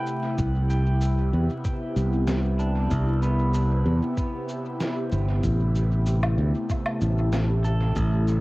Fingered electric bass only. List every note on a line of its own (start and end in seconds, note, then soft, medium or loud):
0.38 1.30 C2 medium
1.33 1.48 E2 medium
1.96 2.88 C2 medium
2.91 3.83 C2 medium
3.86 4.00 E2 medium
5.12 5.40 G1 medium
5.44 6.35 A1 medium
6.38 6.53 D2 medium
7.01 7.93 A1 medium
7.96 8.40 A1 medium